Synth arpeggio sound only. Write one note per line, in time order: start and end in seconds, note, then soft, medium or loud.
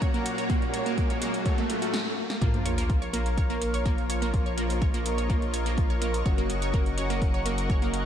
0.02 0.05 C#5 medium
0.14 0.19 A#3 loud
0.38 0.41 C#5 medium
0.50 0.55 A#3 loud
0.74 0.77 C#5 medium
0.86 0.91 A#3 loud
1.10 1.13 C#5 medium
1.22 1.27 A#3 loud
1.46 1.49 C#5 medium
1.58 1.63 A#3 loud
1.70 1.75 F4 medium
1.82 1.90 F#4 medium
2.41 2.47 A#3 loud
2.41 2.47 A#4 medium
2.66 2.69 C#5 medium
2.66 2.69 C#6 medium
2.78 2.83 A#3 loud
2.78 2.83 A#4 medium
3.02 3.05 C#5 medium
3.02 3.05 C#6 medium
3.13 3.19 A#3 loud
3.13 3.19 A#4 medium
3.38 3.41 C#5 medium
3.38 3.41 C#6 medium
3.50 3.55 A#3 loud
3.50 3.55 A#4 medium
3.74 3.77 C#5 medium
3.74 3.77 C#6 medium
3.85 3.91 A#3 loud
3.85 3.91 A#4 medium
4.10 4.13 C#5 medium
4.10 4.13 C#6 medium
4.22 4.27 A#3 loud
4.22 4.27 A#4 medium
4.46 4.49 C#5 medium
4.46 4.49 C#6 medium
4.58 4.63 A#3 loud
4.58 4.63 A#4 medium
4.82 4.85 C#5 medium
4.82 4.85 C#6 medium
4.94 4.99 A#3 loud
4.94 4.99 A#4 medium
5.18 5.21 C#5 medium
5.18 5.21 C#6 medium
5.30 5.35 A#3 loud
5.30 5.35 A#4 medium
5.54 5.57 C#5 medium
5.54 5.57 C#6 medium
5.66 5.71 A#3 loud
5.66 5.71 A#4 medium
5.90 5.93 C#5 medium
5.90 5.93 C#6 medium
6.02 6.07 A#3 loud
6.02 6.07 A#4 medium
6.26 6.29 C#5 medium
6.26 6.29 C#6 medium
6.38 6.43 A#3 loud
6.38 6.43 A#4 medium
6.62 6.65 C#5 medium
6.62 6.65 C#6 medium
6.74 6.79 A#3 loud
6.74 6.79 A#4 medium
6.98 7.01 C#5 medium
6.98 7.01 C#6 medium
7.10 7.15 A#3 loud
7.10 7.15 A#4 medium
7.34 7.37 C#5 medium
7.34 7.37 C#6 medium
7.46 7.51 A#3 loud
7.46 7.51 A#4 medium
7.70 7.73 C#5 medium
7.70 7.73 C#6 medium
7.82 7.87 A#3 loud
7.82 7.87 A#4 medium